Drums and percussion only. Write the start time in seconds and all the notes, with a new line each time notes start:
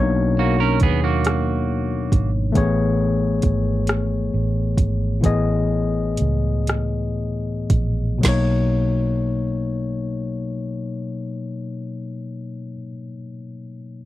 0.80 kick, closed hi-hat
1.25 cross-stick, closed hi-hat
2.12 kick, closed hi-hat
2.55 kick, closed hi-hat
3.42 kick, closed hi-hat
3.87 cross-stick, closed hi-hat
4.78 kick, closed hi-hat
5.24 kick, closed hi-hat
6.17 closed hi-hat
6.67 cross-stick, closed hi-hat
7.70 kick, closed hi-hat
8.23 kick, snare, crash